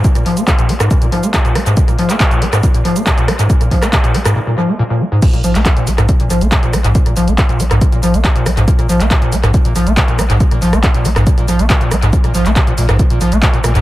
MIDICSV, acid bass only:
0, 0, Header, 1, 2, 480
1, 0, Start_track
1, 0, Tempo, 431655
1, 50, Time_signature, 4, 2, 24, 8
1, 15359, End_track
2, 0, Start_track
2, 0, Title_t, "Acid bass"
2, 0, Program_c, 0, 38
2, 48, Note_on_c, 0, 46, 84
2, 89, Note_off_c, 0, 46, 0
2, 171, Note_on_c, 0, 46, 77
2, 268, Note_off_c, 0, 46, 0
2, 288, Note_on_c, 0, 53, 77
2, 411, Note_on_c, 0, 58, 79
2, 428, Note_off_c, 0, 53, 0
2, 476, Note_off_c, 0, 58, 0
2, 528, Note_on_c, 0, 46, 104
2, 569, Note_off_c, 0, 46, 0
2, 652, Note_on_c, 0, 46, 83
2, 769, Note_on_c, 0, 58, 101
2, 786, Note_off_c, 0, 46, 0
2, 810, Note_off_c, 0, 58, 0
2, 891, Note_on_c, 0, 44, 98
2, 988, Note_off_c, 0, 44, 0
2, 1008, Note_on_c, 0, 46, 87
2, 1050, Note_off_c, 0, 46, 0
2, 1131, Note_on_c, 0, 46, 77
2, 1228, Note_off_c, 0, 46, 0
2, 1248, Note_on_c, 0, 53, 78
2, 1371, Note_on_c, 0, 58, 80
2, 1387, Note_off_c, 0, 53, 0
2, 1436, Note_off_c, 0, 58, 0
2, 1487, Note_on_c, 0, 46, 103
2, 1529, Note_off_c, 0, 46, 0
2, 1611, Note_on_c, 0, 46, 80
2, 1728, Note_on_c, 0, 58, 98
2, 1744, Note_off_c, 0, 46, 0
2, 1769, Note_off_c, 0, 58, 0
2, 1851, Note_on_c, 0, 44, 101
2, 1949, Note_off_c, 0, 44, 0
2, 1969, Note_on_c, 0, 46, 90
2, 2010, Note_off_c, 0, 46, 0
2, 2092, Note_on_c, 0, 46, 73
2, 2189, Note_off_c, 0, 46, 0
2, 2210, Note_on_c, 0, 53, 76
2, 2331, Note_on_c, 0, 58, 81
2, 2348, Note_off_c, 0, 53, 0
2, 2396, Note_off_c, 0, 58, 0
2, 2448, Note_on_c, 0, 46, 101
2, 2489, Note_off_c, 0, 46, 0
2, 2571, Note_on_c, 0, 46, 82
2, 2689, Note_on_c, 0, 58, 102
2, 2706, Note_off_c, 0, 46, 0
2, 2730, Note_off_c, 0, 58, 0
2, 2811, Note_on_c, 0, 44, 99
2, 2909, Note_off_c, 0, 44, 0
2, 2929, Note_on_c, 0, 46, 86
2, 2970, Note_off_c, 0, 46, 0
2, 3051, Note_on_c, 0, 46, 74
2, 3149, Note_off_c, 0, 46, 0
2, 3168, Note_on_c, 0, 53, 77
2, 3291, Note_on_c, 0, 58, 81
2, 3307, Note_off_c, 0, 53, 0
2, 3356, Note_off_c, 0, 58, 0
2, 3408, Note_on_c, 0, 46, 101
2, 3450, Note_off_c, 0, 46, 0
2, 3532, Note_on_c, 0, 46, 79
2, 3649, Note_on_c, 0, 58, 101
2, 3666, Note_off_c, 0, 46, 0
2, 3690, Note_off_c, 0, 58, 0
2, 3772, Note_on_c, 0, 44, 100
2, 3869, Note_off_c, 0, 44, 0
2, 3890, Note_on_c, 0, 46, 93
2, 3930, Note_off_c, 0, 46, 0
2, 4013, Note_on_c, 0, 46, 76
2, 4109, Note_off_c, 0, 46, 0
2, 4129, Note_on_c, 0, 53, 80
2, 4252, Note_on_c, 0, 58, 77
2, 4269, Note_off_c, 0, 53, 0
2, 4317, Note_off_c, 0, 58, 0
2, 4369, Note_on_c, 0, 46, 103
2, 4410, Note_off_c, 0, 46, 0
2, 4492, Note_on_c, 0, 46, 84
2, 4608, Note_on_c, 0, 58, 101
2, 4625, Note_off_c, 0, 46, 0
2, 4649, Note_off_c, 0, 58, 0
2, 4731, Note_on_c, 0, 44, 103
2, 4828, Note_off_c, 0, 44, 0
2, 4849, Note_on_c, 0, 46, 84
2, 4890, Note_off_c, 0, 46, 0
2, 4971, Note_on_c, 0, 46, 72
2, 5068, Note_off_c, 0, 46, 0
2, 5088, Note_on_c, 0, 53, 75
2, 5211, Note_on_c, 0, 58, 80
2, 5228, Note_off_c, 0, 53, 0
2, 5276, Note_off_c, 0, 58, 0
2, 5329, Note_on_c, 0, 46, 100
2, 5370, Note_off_c, 0, 46, 0
2, 5451, Note_on_c, 0, 46, 83
2, 5568, Note_on_c, 0, 58, 106
2, 5585, Note_off_c, 0, 46, 0
2, 5609, Note_off_c, 0, 58, 0
2, 5692, Note_on_c, 0, 44, 101
2, 5789, Note_off_c, 0, 44, 0
2, 5932, Note_on_c, 0, 46, 77
2, 6029, Note_off_c, 0, 46, 0
2, 6049, Note_on_c, 0, 53, 81
2, 6172, Note_on_c, 0, 58, 77
2, 6189, Note_off_c, 0, 53, 0
2, 6237, Note_off_c, 0, 58, 0
2, 6290, Note_on_c, 0, 46, 102
2, 6330, Note_off_c, 0, 46, 0
2, 6412, Note_on_c, 0, 46, 81
2, 6530, Note_on_c, 0, 58, 103
2, 6547, Note_off_c, 0, 46, 0
2, 6570, Note_off_c, 0, 58, 0
2, 6652, Note_on_c, 0, 44, 102
2, 6749, Note_off_c, 0, 44, 0
2, 6770, Note_on_c, 0, 46, 85
2, 6810, Note_off_c, 0, 46, 0
2, 6893, Note_on_c, 0, 46, 76
2, 6989, Note_off_c, 0, 46, 0
2, 7010, Note_on_c, 0, 53, 78
2, 7133, Note_on_c, 0, 58, 81
2, 7149, Note_off_c, 0, 53, 0
2, 7197, Note_off_c, 0, 58, 0
2, 7250, Note_on_c, 0, 46, 104
2, 7290, Note_off_c, 0, 46, 0
2, 7372, Note_on_c, 0, 46, 77
2, 7490, Note_on_c, 0, 58, 102
2, 7506, Note_off_c, 0, 46, 0
2, 7530, Note_off_c, 0, 58, 0
2, 7612, Note_on_c, 0, 44, 101
2, 7709, Note_off_c, 0, 44, 0
2, 7729, Note_on_c, 0, 46, 87
2, 7770, Note_off_c, 0, 46, 0
2, 7853, Note_on_c, 0, 46, 74
2, 7949, Note_off_c, 0, 46, 0
2, 7969, Note_on_c, 0, 53, 76
2, 8092, Note_on_c, 0, 58, 83
2, 8109, Note_off_c, 0, 53, 0
2, 8157, Note_off_c, 0, 58, 0
2, 8208, Note_on_c, 0, 46, 99
2, 8249, Note_off_c, 0, 46, 0
2, 8331, Note_on_c, 0, 46, 82
2, 8448, Note_on_c, 0, 58, 99
2, 8465, Note_off_c, 0, 46, 0
2, 8489, Note_off_c, 0, 58, 0
2, 8571, Note_on_c, 0, 44, 101
2, 8669, Note_off_c, 0, 44, 0
2, 8812, Note_on_c, 0, 46, 73
2, 8909, Note_off_c, 0, 46, 0
2, 8928, Note_on_c, 0, 53, 78
2, 9052, Note_on_c, 0, 58, 80
2, 9069, Note_off_c, 0, 53, 0
2, 9117, Note_off_c, 0, 58, 0
2, 9169, Note_on_c, 0, 46, 103
2, 9210, Note_off_c, 0, 46, 0
2, 9291, Note_on_c, 0, 46, 77
2, 9407, Note_on_c, 0, 58, 97
2, 9424, Note_off_c, 0, 46, 0
2, 9449, Note_off_c, 0, 58, 0
2, 9531, Note_on_c, 0, 44, 102
2, 9628, Note_off_c, 0, 44, 0
2, 9648, Note_on_c, 0, 46, 88
2, 9689, Note_off_c, 0, 46, 0
2, 9770, Note_on_c, 0, 46, 74
2, 9868, Note_off_c, 0, 46, 0
2, 9887, Note_on_c, 0, 53, 74
2, 10010, Note_on_c, 0, 58, 81
2, 10027, Note_off_c, 0, 53, 0
2, 10076, Note_off_c, 0, 58, 0
2, 10127, Note_on_c, 0, 46, 98
2, 10169, Note_off_c, 0, 46, 0
2, 10251, Note_on_c, 0, 46, 81
2, 10366, Note_on_c, 0, 58, 97
2, 10383, Note_off_c, 0, 46, 0
2, 10408, Note_off_c, 0, 58, 0
2, 10489, Note_on_c, 0, 44, 99
2, 10588, Note_off_c, 0, 44, 0
2, 10607, Note_on_c, 0, 46, 86
2, 10649, Note_off_c, 0, 46, 0
2, 10731, Note_on_c, 0, 46, 72
2, 10828, Note_off_c, 0, 46, 0
2, 10847, Note_on_c, 0, 53, 76
2, 10971, Note_on_c, 0, 58, 80
2, 10988, Note_off_c, 0, 53, 0
2, 11036, Note_off_c, 0, 58, 0
2, 11088, Note_on_c, 0, 46, 106
2, 11129, Note_off_c, 0, 46, 0
2, 11210, Note_on_c, 0, 46, 80
2, 11327, Note_on_c, 0, 58, 100
2, 11344, Note_off_c, 0, 46, 0
2, 11369, Note_off_c, 0, 58, 0
2, 11451, Note_on_c, 0, 44, 99
2, 11548, Note_off_c, 0, 44, 0
2, 11569, Note_on_c, 0, 46, 85
2, 11610, Note_off_c, 0, 46, 0
2, 11692, Note_on_c, 0, 46, 74
2, 11789, Note_off_c, 0, 46, 0
2, 11809, Note_on_c, 0, 53, 80
2, 11932, Note_on_c, 0, 58, 80
2, 11948, Note_off_c, 0, 53, 0
2, 11996, Note_off_c, 0, 58, 0
2, 12049, Note_on_c, 0, 46, 98
2, 12090, Note_off_c, 0, 46, 0
2, 12173, Note_on_c, 0, 46, 80
2, 12290, Note_on_c, 0, 58, 105
2, 12307, Note_off_c, 0, 46, 0
2, 12330, Note_off_c, 0, 58, 0
2, 12413, Note_on_c, 0, 44, 101
2, 12509, Note_off_c, 0, 44, 0
2, 12529, Note_on_c, 0, 46, 85
2, 12570, Note_off_c, 0, 46, 0
2, 12652, Note_on_c, 0, 46, 72
2, 12749, Note_off_c, 0, 46, 0
2, 12770, Note_on_c, 0, 53, 75
2, 12893, Note_on_c, 0, 58, 83
2, 12910, Note_off_c, 0, 53, 0
2, 12957, Note_off_c, 0, 58, 0
2, 13010, Note_on_c, 0, 46, 107
2, 13050, Note_off_c, 0, 46, 0
2, 13132, Note_on_c, 0, 46, 80
2, 13251, Note_on_c, 0, 58, 99
2, 13267, Note_off_c, 0, 46, 0
2, 13291, Note_off_c, 0, 58, 0
2, 13373, Note_on_c, 0, 44, 100
2, 13469, Note_off_c, 0, 44, 0
2, 13489, Note_on_c, 0, 46, 88
2, 13530, Note_off_c, 0, 46, 0
2, 13612, Note_on_c, 0, 46, 73
2, 13709, Note_off_c, 0, 46, 0
2, 13730, Note_on_c, 0, 53, 78
2, 13853, Note_on_c, 0, 58, 79
2, 13870, Note_off_c, 0, 53, 0
2, 13917, Note_off_c, 0, 58, 0
2, 13970, Note_on_c, 0, 46, 100
2, 14010, Note_off_c, 0, 46, 0
2, 14091, Note_on_c, 0, 46, 82
2, 14156, Note_off_c, 0, 46, 0
2, 14210, Note_on_c, 0, 46, 79
2, 14311, Note_off_c, 0, 46, 0
2, 14332, Note_on_c, 0, 44, 100
2, 14429, Note_off_c, 0, 44, 0
2, 14449, Note_on_c, 0, 46, 83
2, 14490, Note_off_c, 0, 46, 0
2, 14573, Note_on_c, 0, 46, 74
2, 14669, Note_off_c, 0, 46, 0
2, 14690, Note_on_c, 0, 53, 78
2, 14813, Note_on_c, 0, 58, 79
2, 14830, Note_off_c, 0, 53, 0
2, 14877, Note_off_c, 0, 58, 0
2, 14930, Note_on_c, 0, 46, 98
2, 14970, Note_off_c, 0, 46, 0
2, 15053, Note_on_c, 0, 46, 80
2, 15117, Note_off_c, 0, 46, 0
2, 15170, Note_on_c, 0, 46, 75
2, 15271, Note_off_c, 0, 46, 0
2, 15292, Note_on_c, 0, 44, 102
2, 15359, Note_off_c, 0, 44, 0
2, 15359, End_track
0, 0, End_of_file